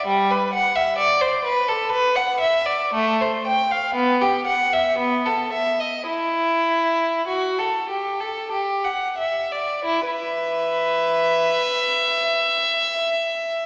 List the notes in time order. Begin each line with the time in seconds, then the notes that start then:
0.06 G3
0.30 B4
0.53 F#5
0.75 E5
0.98 D5
1.21 C5
1.45 B4
1.68 A4
1.91 B4
2.15 F#5
2.40 E5
2.66 D5
2.93 A3
3.21 C5
3.46 G5
3.71 F5
3.95 B3
4.21 G4
4.47 F#5
4.73 E5
4.98 B3
5.25 A4
5.52 E5
5.80 D#5
6.07 E4
7.27 F#4
7.58 A4
7.89 G4
8.20 A4
8.52 G4
8.84 F#5
9.18 E5
9.51 D5
9.85 E4
10.06 B4 E5